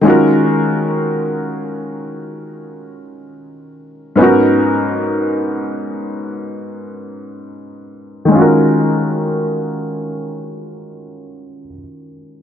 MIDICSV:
0, 0, Header, 1, 2, 480
1, 0, Start_track
1, 0, Key_signature, -6, "minor"
1, 0, Tempo, 500000
1, 11925, End_track
2, 0, Start_track
2, 0, Title_t, "Felt piano"
2, 0, Program_c, 0, 0
2, 0, Control_c, 0, 64, 127
2, 14, Note_on_c, 0, 51, 73
2, 29, Note_on_c, 0, 56, 62
2, 45, Note_on_c, 0, 61, 62
2, 61, Note_on_c, 0, 65, 64
2, 63, Control_c, 0, 64, 0
2, 77, Note_on_c, 0, 66, 65
2, 93, Note_on_c, 0, 70, 75
2, 238, Control_c, 0, 64, 127
2, 3965, Note_off_c, 0, 51, 0
2, 3973, Note_off_c, 0, 56, 0
2, 3981, Note_off_c, 0, 61, 0
2, 3989, Note_off_c, 0, 65, 0
2, 3989, Note_on_c, 0, 44, 73
2, 3997, Note_off_c, 0, 66, 0
2, 4004, Note_on_c, 0, 59, 67
2, 4005, Note_off_c, 0, 70, 0
2, 4020, Note_on_c, 0, 61, 63
2, 4033, Control_c, 0, 64, 0
2, 4036, Note_on_c, 0, 63, 60
2, 4052, Note_on_c, 0, 66, 65
2, 4067, Note_on_c, 0, 70, 78
2, 4180, Control_c, 0, 64, 127
2, 7922, Note_on_c, 0, 51, 73
2, 7939, Note_off_c, 0, 44, 0
2, 7947, Note_off_c, 0, 59, 0
2, 7952, Note_on_c, 0, 56, 66
2, 7954, Note_off_c, 0, 61, 0
2, 7963, Note_off_c, 0, 63, 0
2, 7971, Note_off_c, 0, 66, 0
2, 7978, Note_off_c, 0, 70, 0
2, 7985, Note_on_c, 0, 61, 67
2, 8004, Control_c, 0, 64, 0
2, 8016, Note_on_c, 0, 65, 65
2, 8048, Note_on_c, 0, 66, 63
2, 8080, Note_on_c, 0, 70, 76
2, 8199, Control_c, 0, 64, 127
2, 11151, Note_off_c, 0, 51, 0
2, 11181, Note_off_c, 0, 56, 0
2, 11214, Note_off_c, 0, 61, 0
2, 11245, Note_off_c, 0, 65, 0
2, 11278, Note_off_c, 0, 66, 0
2, 11309, Note_off_c, 0, 70, 0
2, 11925, End_track
0, 0, End_of_file